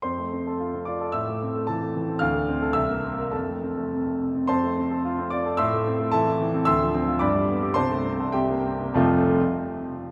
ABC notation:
X:1
M:2/4
L:1/16
Q:1/4=108
K:F
V:1 name="Grand piano"
[cc']6 [dd']2 | [ee']4 [Aa]4 | [ff']4 [ee']4 | [Aa]6 z2 |
[cac']6 [dd']2 | [ec'e']4 [Aea]4 | [ec'e']4 [d=bd']4 | [cac']4 [Geg]4 |
[F,,,C,,F,A,CFa]2 z6 |]
V:2 name="Grand piano"
F,, A, C A F C F A | A,, A, C A, E, A, E, C | D,, A, C A C,, B, C B | F,, A, C A, C, A, C, C |
F,, A, C A F C F A | A,, A, C A, E, A, E, C | D,, F, C F G,, G, =B, G | C,, A, C A C,, B, C B, |
z8 |]